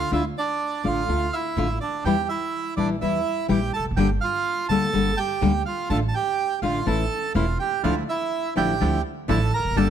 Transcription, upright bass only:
0.12 D2
0.85 A1
1.08 D2
1.56 A1
2.05 E2
2.77 A#1
3.02 E2
3.49 A#1
3.79 E1
3.85 F1
3.91 F#1
3.97 G1
4.69 D2
4.94 G1
5.42 D2
5.90 A1
6.62 A1
6.86 A1
7.35 E1
7.84 D2
8.56 A1
8.81 D2
9.29 A1
9.59 E1
9.65 F1
9.71 F#1
9.77 G1

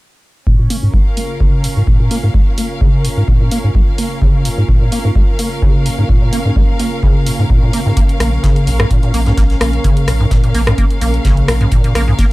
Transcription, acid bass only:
0.47 A#2
0.59 A#2
0.70 A#3
0.83 G#2
0.94 G#3
1.17 A#3
1.41 C#3
1.64 A#2
1.76 G#2
1.87 A#2
2.00 A#2
2.11 A#3
2.23 G#2
2.34 G#3
2.58 A#3
2.81 C#3
3.04 A#2
3.17 G#2
3.28 A#2
3.41 A#2
3.52 A#3
3.64 G#2
3.75 G#3
3.98 A#3
4.22 C#3
4.45 A#2
4.58 G#2
4.69 A#2
4.81 A#2
4.92 A#3
5.05 G#2
5.16 G#3
5.39 A#3
5.62 C#3
5.86 A#2
5.98 G#2
6.09 A#2
6.22 A#2
6.33 A#3
6.45 G#2
6.56 G#3
6.80 A#3
7.03 C#3
7.27 A#2
7.39 G#2
7.50 A#2
7.62 A#2
7.73 A#3
7.86 G#2
7.97 A#3
8.20 A#3
8.44 C#3
8.67 A#2
8.80 G#2
8.91 A#2
9.03 A#2
9.14 A#3
9.27 G#2
9.37 A#3
9.61 A#3
9.84 C#3
10.08 A#2
10.20 G#2
10.31 A#2
10.44 A#2
10.55 A#3
10.67 G#2
10.78 A#3
11.02 A#3
11.25 C#3
11.48 A#2
11.61 G#2
11.72 A#2
11.84 A#2
11.95 A#3
12.08 G#2
12.19 A#3

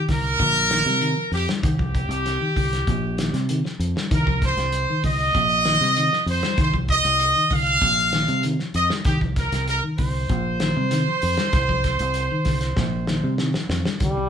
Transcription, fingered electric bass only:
0.09 C2
0.40 A#1
0.86 C3
1.32 F2
1.64 C2
2.09 C2
2.56 C2
2.87 A#1
3.33 C3
3.79 F2
4.11 C2
4.57 C2
5.04 C2
5.35 A#1
5.81 C3
6.26 F2
6.58 C2
7.05 C2
7.51 C2
7.81 A#1
8.28 C3
8.75 F2
9.05 C2
9.52 C2
9.99 C2
10.29 A#1
10.77 C3
11.23 F2
11.53 C2
12.00 C2
12.46 C2
12.77 A#1
13.24 C3
13.69 F2
14.01 C2

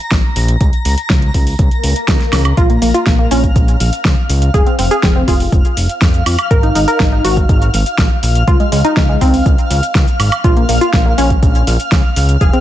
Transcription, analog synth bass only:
0.11 A#1
0.36 A#1
0.61 C#2
0.85 C#2
1.10 C#2
1.34 C#2
1.59 C#2
1.84 C#2
2.08 C#2
2.33 C#2
2.57 A#1
2.82 A#1
3.07 A#1
3.31 A#1
3.56 A#1
3.80 A#1
4.05 C#2
4.29 C#2
4.54 F1
4.79 F1
5.03 F1
5.28 F1
5.52 F1
5.77 F1
6.02 F2
6.26 F2
6.51 G#1
6.75 G#1
7.00 G#1
7.25 G#1
7.49 G#1
7.74 G#1
7.98 A#1
8.23 A#1
8.48 C#2
8.72 C#2
8.97 C#2
9.21 C#2
9.46 C#2
9.70 C#2
9.95 C#2
10.20 G#1
10.44 A#1
10.69 A#1
10.93 A#1
11.18 A#1
11.43 A#1
11.67 A#1
11.92 C#2
12.16 C#2
12.41 F1

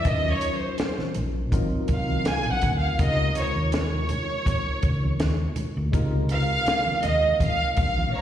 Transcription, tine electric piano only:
0.04 F#3 C#4 D#4 F4 A#4
1.51 F#3 C4 D#4 F4 A#4
2.99 C3 G#3 D#4 F4 A#4
5.92 C3 G#3 D#4 F4 A#4

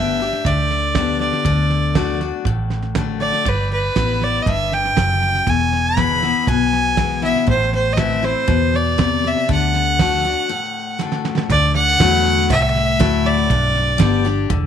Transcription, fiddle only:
Already playing: E5
0.46 D5
1.20 D5
3.21 D5
3.49 B4
3.73 B4
4.23 D5
4.42 D#5
4.48 E5
4.73 G5
5.50 G#5
5.98 B5
6.49 G#5
7.24 E5
7.49 C5
7.75 C5
7.93 D#5
7.99 E5
8.24 C5
8.75 D5
9.27 E5
9.53 F#5
11.51 D5
11.75 F#5
12.51 E5
13.27 D5

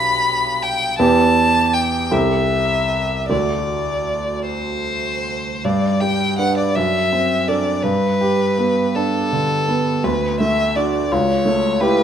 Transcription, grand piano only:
Already playing: B1 D4 G4 B4
0.99 E2 B3 G4 B4
2.11 C2 C4 G4 A4
3.29 D2 A3 F#4 A4
5.65 G2
6.02 G3
6.39 D4 B4
6.76 F#2
7.13 C4
7.48 D4 A4
7.84 G2
8.21 G4
8.58 B3
8.95 D4
9.33 D3
9.69 B3
10.04 D2
10.40 A3
10.76 D4 F#4
11.12 C#2
11.45 A3
11.81 E4 G4

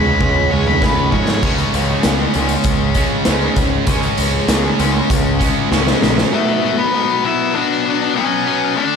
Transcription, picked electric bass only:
Already playing: C#2
0.21 C#2
0.53 C#2
0.82 C#2
1.12 G#2
1.43 C#2
1.74 C#2
2.05 C#2
2.35 C#2
2.65 C#2
3.27 C#2
3.57 C#2
3.87 C#2
4.18 C#2
4.49 C#2
4.80 C#2
5.10 C#2
5.72 C#2
6.03 A#1

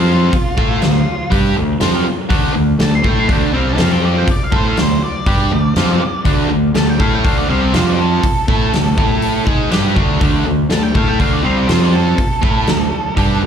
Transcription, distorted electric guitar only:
Already playing: F3 C4 F4
0.33 muted distorted electric guitar stroke
0.57 A3 E4 A4
0.82 D3 A3
1.30 G3 D4 G4
1.56 D3 A3
1.80 F3 C4 F4
2.05 muted distorted electric guitar stroke
2.29 D3 A3 D4
2.53 D3 A3
2.79 D3 A3
3.04 A3 E4 A4
3.28 D3 A3 D4
3.53 C3 G3 C4
3.77 F3 C4 F4
4.28 muted distorted electric guitar stroke
4.52 A3 E4 A4
4.77 D3 A3
5.27 G3 D4 G4
5.52 D3 A3
5.77 F3 C4 F4
6.01 muted distorted electric guitar stroke
6.25 D3 A3 D4
6.50 D3 A3
6.75 D3 A3
6.99 A3 E4 A4
7.25 D3 A3 D4
7.49 C3 G3 C4
7.73 F3 C4 F4
8.23 muted distorted electric guitar stroke
8.48 A3 E4 A4
8.72 D3 A3
8.97 A3 E4 A4
9.46 G#3 D#4 G#4
9.71 G3 D4 G4
9.96 D3 A3 D4
10.21 D3 A3 D4
10.46 D3 A3
10.70 D3 A3
10.94 A3 E4 A4
11.19 D3 A3 D4
11.43 C3 G3 C4
11.68 F3 C4 F4
12.17 muted distorted electric guitar stroke
12.41 A3 E4 A4
12.68 D3 A3
13.17 G3 D4 G4
13.42 D3 A3

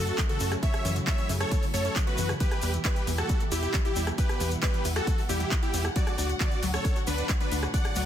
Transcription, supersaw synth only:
Already playing: F#4 A4
0.29 F#4 A4
0.63 C#5 E5
1.07 C#5 E5
1.40 A4 C#5
1.74 A4 C#5
2.07 F#4 B4
2.40 G4 B4
2.85 G4 B4
3.18 F#4 A4
3.52 E4 G4
3.85 E4 G4
4.18 G4 B4
4.62 G4 B4
4.96 F#4 A4
5.29 E4 G4
5.62 E4 G4
5.96 F#4 D5
6.40 F#4 D5
6.74 A4 C#5
7.07 D4 B4
7.41 D4 B4
7.74 D5 F#5

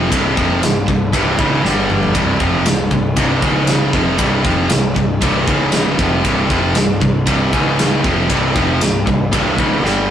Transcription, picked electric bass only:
0.12 C1
0.37 F1
0.63 C1
0.88 C1
1.14 C1
1.39 C#1
1.65 G1
2.15 C1
2.40 F1
2.66 C1
2.92 C1
3.17 C1
3.43 C#1
3.93 F1
4.19 C1
4.45 F1
4.71 C1
4.97 C1
5.23 C1
5.47 C#1
5.99 F1
6.25 C1
6.50 F1
6.77 C1
7.02 C1
7.27 C1
7.53 C#1
8.04 F1
8.30 C1
8.56 F1
8.82 C1
9.07 C1
9.33 C1
9.59 C#1
9.84 G1

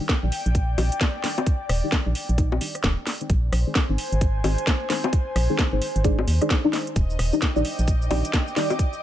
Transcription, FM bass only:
0.23 A#1
0.46 A#1
0.78 A#1
1.69 D#1
2.06 A#1
2.29 A#1
2.84 D#1
3.30 A#1
3.52 A#1
3.89 G#1
4.12 G#1
4.44 G#1
5.36 A#1
5.73 G#1
5.96 G#1
6.28 D#2
6.96 D#1
7.19 D#1
7.56 A#1
7.79 A#1
8.11 A#1

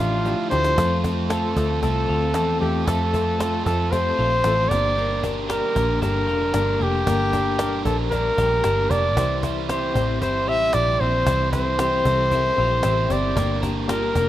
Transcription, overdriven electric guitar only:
0.00 A3 D4 E4 A4
0.24 D3 F3 A3 D4 E4 A4
0.51 A3 D4 E4 A4
0.76 F3 A3 C4 F4 A4
1.03 C4 F4 A4
1.30 F3 A3 C4 F4 A4
1.56 C4 F4 A4
1.81 A3 C4 F4 A4
2.35 F3 A3 C4 F4 A4
2.60 C4 F4 A4
2.87 F3 A3 C4 F4 A4
3.14 C4 F4 A4
3.40 F3 A3 C4 F4 A4
3.66 C4 F4 A4
3.93 A3 C4 F4 A4
4.44 F3 A3 C4 F4 A4
4.71 D4 G4 A#4
4.96 G3 D4 G4 A#4
5.24 D4 G4 A#4
5.50 G3 D4 G4 A#4
5.77 D4 G4 A#4
6.02 G3 D4 G4 A#4
6.55 G3 D4 G4 A#4
6.81 D4 G4 A#4
7.08 G3 D4 G4 A#4
7.34 D4 G4 A#4
7.61 G3 D4 G4 A#4
7.86 D4 G4 A#4
8.12 G3 D4 G4 A#4
8.64 G3 D4 G4 A#4
8.89 D4 G4 A#4
9.16 C3 E3 G3 C4 E4 C5
9.42 G3 C4 E4 C5
9.68 C3 E3 G3 C4 E4 C5
9.94 G3 C4 E4 C5
10.21 G3 C4 E4 C5
10.73 C3 E3 G3 C4 E4 C5
11.00 G3 C4 E4 C5
11.27 C3 E3 G3 C4 E4 C5
11.55 G3 C4 E4 C5
11.81 C3 E3 G3 C4 E4 C5
12.07 G3 C4 E4 C5
12.33 G3 C4 E4 C5
12.85 C3 E3 G3 C4 E4 C5
13.11 G3 C4 E4 C5
13.36 G3 D4 G4 A#4
13.61 D4 G4 A#4
13.88 G3 D4 G4 A#4
14.14 D4 G4 A#4

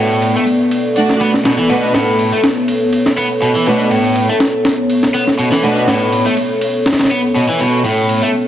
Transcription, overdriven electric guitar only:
Already playing: A2
0.36 A3
1.21 B3
1.45 B2
1.58 E3
1.70 B2
1.95 A2
2.32 A3
3.18 B3
3.42 B2
3.55 E3
3.67 B2
3.91 A2
4.29 A3
5.14 B3
5.39 B2
5.52 E3
5.63 B2
5.88 A2
6.26 A3
7.11 B3
7.36 B2
7.49 E3
7.60 B2
7.85 A2
8.23 A3

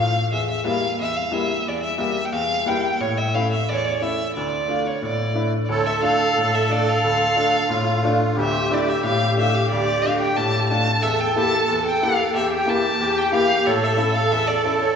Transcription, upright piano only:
Already playing: A2 F3 A3 F4
0.32 E2
0.64 G3 A#3 E4
0.99 E2
1.31 G3 A#3 E4
1.67 E2
1.98 G3 A#3 G4
2.32 E2
2.66 G3 A#3 E4
3.00 A2
3.35 A3 C#4 E4
3.69 E2
4.00 A3 C#4 E4
4.37 D2
4.68 A3 D4 F4
5.02 A2
5.34 A3 D4 E4
5.69 D2
6.01 A3 D4 F4
6.37 A2
6.69 A3 D4 F4
7.04 D2
7.36 A3 D4 F4
7.69 A2
8.03 A3 D4 F4
8.37 D2
8.70 A3 D4 E4
9.03 A2
9.37 A3 D4 F4
9.72 D2
10.05 A3 D4 F4
10.38 A2
10.70 A3 D4 F4
11.03 E2
11.36 A#3 E4 G4
11.68 E2
12.02 A#3 E4 G4
12.34 E2
12.66 A#3 E4 G4
13.00 E2
13.32 A#3 E4 G4
13.67 A2
13.97 C#4 E4 A4
14.31 E2
14.64 C#4 E4 A4

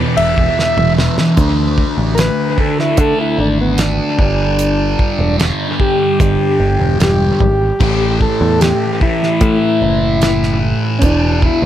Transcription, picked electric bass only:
0.18 E1
0.77 E1
1.37 D2
1.98 A1
2.98 D3
3.38 G#1
4.19 G1
5.19 E1
6.20 G1
6.60 G1
6.80 E1
7.00 E1
7.40 G#1
7.80 A1
8.41 E2
9.41 A2
9.82 F#1
11.02 E1
11.62 D2

